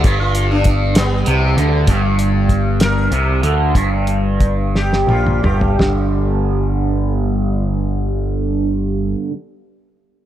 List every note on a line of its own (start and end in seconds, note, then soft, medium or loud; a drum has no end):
0.00 1.25 G2 loud
0.00 0.16 G4 medium
0.04 1.23 G1 medium
0.04 kick medium
0.04 closed hi-hat medium
0.21 0.50 F4 medium
0.35 closed hi-hat medium
0.51 0.95 D4 medium
0.64 kick medium
0.64 closed hi-hat medium
0.95 2.15 G3 medium
0.95 2.15 B3 medium
0.95 snare loud
0.95 closed hi-hat medium
1.26 1.55 C2 medium
1.26 1.56 C3 medium
1.26 closed hi-hat medium
1.57 1.85 D2 medium
1.57 1.87 D3 medium
1.57 closed hi-hat soft
1.87 3.07 G1 medium
1.87 3.10 G2 medium
1.87 kick medium
1.87 closed hi-hat medium
2.19 closed hi-hat soft
2.49 kick medium
2.49 closed hi-hat soft
2.80 4.70 A#4 medium
2.80 snare medium
2.80 closed hi-hat medium
3.11 3.41 C2 medium
3.11 3.42 C3 medium
3.11 closed hi-hat soft
3.42 3.73 D2 medium
3.42 3.74 D3 medium
3.42 closed hi-hat soft
3.75 5.04 G1 medium
3.75 5.07 G2 medium
3.75 kick medium
3.75 closed hi-hat medium
4.07 closed hi-hat soft
4.40 kick medium
4.40 closed hi-hat soft
4.75 5.08 G4 medium
4.75 snare soft
4.93 snare soft
5.07 5.40 A#1 medium
5.07 5.42 A#2 medium
5.07 5.43 F4 medium
5.07 high tom medium
5.26 mid tom medium
5.42 5.76 G1 medium
5.42 5.77 G2 medium
5.42 5.77 G4 medium
5.42 mid tom medium
5.61 floor tom medium
5.78 9.14 G1 medium
5.78 9.28 G2 medium
5.78 9.30 D3 medium
5.78 9.32 G3 medium
5.78 snare medium
5.78 floor tom medium